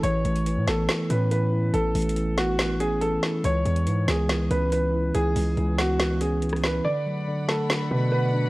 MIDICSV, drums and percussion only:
0, 0, Header, 1, 2, 480
1, 0, Start_track
1, 0, Key_signature, 3, "major"
1, 0, Tempo, 425532
1, 43, Time_signature, 4, 2, 24, 8
1, 9581, End_track
2, 0, Start_track
2, 0, Title_t, "Drums"
2, 43, Note_on_c, 9, 42, 70
2, 156, Note_off_c, 9, 42, 0
2, 283, Note_on_c, 9, 42, 56
2, 396, Note_off_c, 9, 42, 0
2, 403, Note_on_c, 9, 42, 54
2, 516, Note_off_c, 9, 42, 0
2, 523, Note_on_c, 9, 42, 69
2, 636, Note_off_c, 9, 42, 0
2, 763, Note_on_c, 9, 42, 75
2, 764, Note_on_c, 9, 38, 94
2, 876, Note_off_c, 9, 42, 0
2, 877, Note_off_c, 9, 38, 0
2, 1003, Note_on_c, 9, 38, 123
2, 1003, Note_on_c, 9, 42, 84
2, 1116, Note_off_c, 9, 38, 0
2, 1116, Note_off_c, 9, 42, 0
2, 1243, Note_on_c, 9, 42, 73
2, 1356, Note_off_c, 9, 42, 0
2, 1483, Note_on_c, 9, 42, 67
2, 1596, Note_off_c, 9, 42, 0
2, 1963, Note_on_c, 9, 42, 70
2, 2076, Note_off_c, 9, 42, 0
2, 2203, Note_on_c, 9, 42, 41
2, 2203, Note_on_c, 9, 46, 73
2, 2283, Note_off_c, 9, 42, 0
2, 2283, Note_on_c, 9, 42, 56
2, 2316, Note_off_c, 9, 46, 0
2, 2363, Note_off_c, 9, 42, 0
2, 2363, Note_on_c, 9, 42, 71
2, 2443, Note_off_c, 9, 42, 0
2, 2443, Note_on_c, 9, 42, 70
2, 2556, Note_off_c, 9, 42, 0
2, 2683, Note_on_c, 9, 42, 77
2, 2684, Note_on_c, 9, 38, 92
2, 2796, Note_off_c, 9, 38, 0
2, 2796, Note_off_c, 9, 42, 0
2, 2923, Note_on_c, 9, 38, 115
2, 2923, Note_on_c, 9, 42, 86
2, 3035, Note_off_c, 9, 38, 0
2, 3035, Note_off_c, 9, 42, 0
2, 3163, Note_on_c, 9, 42, 76
2, 3276, Note_off_c, 9, 42, 0
2, 3403, Note_on_c, 9, 42, 67
2, 3516, Note_off_c, 9, 42, 0
2, 3644, Note_on_c, 9, 38, 95
2, 3757, Note_off_c, 9, 38, 0
2, 3883, Note_on_c, 9, 42, 68
2, 3996, Note_off_c, 9, 42, 0
2, 4123, Note_on_c, 9, 42, 58
2, 4236, Note_off_c, 9, 42, 0
2, 4243, Note_on_c, 9, 42, 58
2, 4356, Note_off_c, 9, 42, 0
2, 4363, Note_on_c, 9, 42, 71
2, 4476, Note_off_c, 9, 42, 0
2, 4603, Note_on_c, 9, 38, 95
2, 4603, Note_on_c, 9, 42, 79
2, 4716, Note_off_c, 9, 38, 0
2, 4716, Note_off_c, 9, 42, 0
2, 4843, Note_on_c, 9, 38, 117
2, 4843, Note_on_c, 9, 42, 87
2, 4955, Note_off_c, 9, 38, 0
2, 4955, Note_off_c, 9, 42, 0
2, 5083, Note_on_c, 9, 42, 73
2, 5195, Note_off_c, 9, 42, 0
2, 5323, Note_on_c, 9, 42, 69
2, 5436, Note_off_c, 9, 42, 0
2, 5803, Note_on_c, 9, 42, 72
2, 5916, Note_off_c, 9, 42, 0
2, 6043, Note_on_c, 9, 46, 72
2, 6156, Note_off_c, 9, 46, 0
2, 6283, Note_on_c, 9, 42, 70
2, 6396, Note_off_c, 9, 42, 0
2, 6524, Note_on_c, 9, 38, 95
2, 6524, Note_on_c, 9, 42, 76
2, 6636, Note_off_c, 9, 42, 0
2, 6637, Note_off_c, 9, 38, 0
2, 6763, Note_on_c, 9, 38, 118
2, 6763, Note_on_c, 9, 42, 91
2, 6876, Note_off_c, 9, 38, 0
2, 6876, Note_off_c, 9, 42, 0
2, 7003, Note_on_c, 9, 42, 75
2, 7116, Note_off_c, 9, 42, 0
2, 7243, Note_on_c, 9, 42, 56
2, 7323, Note_off_c, 9, 42, 0
2, 7323, Note_on_c, 9, 42, 57
2, 7363, Note_on_c, 9, 37, 90
2, 7403, Note_off_c, 9, 42, 0
2, 7403, Note_on_c, 9, 42, 55
2, 7475, Note_off_c, 9, 37, 0
2, 7484, Note_on_c, 9, 38, 97
2, 7516, Note_off_c, 9, 42, 0
2, 7597, Note_off_c, 9, 38, 0
2, 8444, Note_on_c, 9, 38, 93
2, 8556, Note_off_c, 9, 38, 0
2, 8683, Note_on_c, 9, 38, 123
2, 8796, Note_off_c, 9, 38, 0
2, 9581, End_track
0, 0, End_of_file